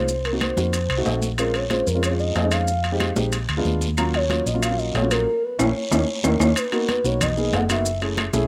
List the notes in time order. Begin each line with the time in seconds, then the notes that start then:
Already playing: C2 C5
0.08 high conga, long guiro, maracas
0.25 A#4, high conga, high timbale, maracas
0.32 A#3 C4 D#4 F#4
0.40 C5, high conga, high timbale, short guiro, claves, maracas
0.57 F2 A#3 C4 D#4 F#4, high conga, short guiro, maracas
0.73 high conga, high timbale, long guiro, maracas
0.89 C2, high conga, high timbale, claves, maracas
0.97 A3 C4 D#4 F#4
1.06 A#1, high conga, low timbale, short guiro, maracas
1.22 high conga, short guiro, maracas
1.38 G#3 C4 C#4 F4 A#4, high conga, high timbale, long guiro, claves, maracas
1.54 C#5, high conga, high timbale, maracas
1.70 G#3 C4 C#4 F4 C5, high conga, high timbale, short guiro, maracas
1.87 F2 A#4, high conga, short guiro, maracas
1.95 G#3 C4 C#4 F4
2.03 C#5, high conga, high timbale, long guiro, claves, maracas
2.10 G#3 C4 C#4 F4
2.19 D#5, high conga, maracas
2.35 F2, high conga, high timbale, low timbale, short guiro, maracas
2.43 G#3 C4 C#4 D#4
2.51 F5, high timbale, short guiro, claves, maracas
2.68 high conga, long guiro, maracas
2.84 high conga, high timbale, maracas
2.92 G#3 C4 D#4 G4
3.00 high conga, high timbale, short guiro, claves, maracas
3.16 A#1 G#3 C4 D#4 G4, high conga, short guiro, maracas
3.32 high conga, high timbale, long guiro, maracas
3.49 D2, high conga, high timbale, claves, maracas
3.57 G#3 B3 D4 F4
3.65 D#2, high conga, short guiro, maracas
3.81 high conga, short guiro, maracas
3.97 F#3 A#3 C#4 F4 A#5, high conga, high timbale, long guiro, claves, maracas
4.14 C#5, high conga, high timbale, maracas
4.30 F#3 A#3 C#4 F4, high conga, high timbale, short guiro, maracas
4.46 A#1 D#5, high conga, short guiro, maracas
4.54 F#3 A#3 C#4 F4
4.62 F5, high conga, high timbale, long guiro, claves, maracas
4.70 F#3 A#3 C#4 F4
4.78 D#5, high conga, maracas
4.94 A#1 C#5, high conga, high timbale, low timbale, short guiro, maracas
5.02 F#3 A#3 C#4 F4
5.11 A#4, high timbale, short guiro, claves, maracas
5.43 B4
5.59 A#1 A#3 C#4 E4 C#5, high conga, high timbale, long guiro, claves, maracas
5.91 D#2 A#3 C#4 D#4, high conga, high timbale, long guiro, claves, maracas
6.24 D#2 A#3 C#4 D#4 A#4, high conga, high timbale, long guiro, claves, maracas
6.40 D#2 A#3 C#4 D#4 C#5, high conga, high timbale, long guiro, claves, maracas
6.56 B4, high conga, high timbale, long guiro, claves, maracas
6.72 A#3 B3 D#4 F#4 A#4, high conga, high timbale, maracas
6.89 B4, high conga, high timbale, short guiro, maracas
7.04 B1 A#3 B3 D#4 F#4 C#5, high conga, short guiro, maracas
7.21 D#5, high conga, low conga, high timbale, long guiro, claves, maracas
7.37 A#3 B3 D#4 G#4, maracas
7.52 F#1 F#5, high conga, high timbale, low timbale, short guiro, maracas
7.69 A#3 B3 D#4 F#4 E5, high conga, high timbale, short guiro, claves, maracas
7.85 high conga, long guiro, maracas
8.01 A3 C#4 E4 G#4, high conga, high timbale, maracas
8.17 high conga, high timbale, short guiro, claves, maracas
8.33 B1 A3 C#4 E4 G#4, high conga, short guiro, maracas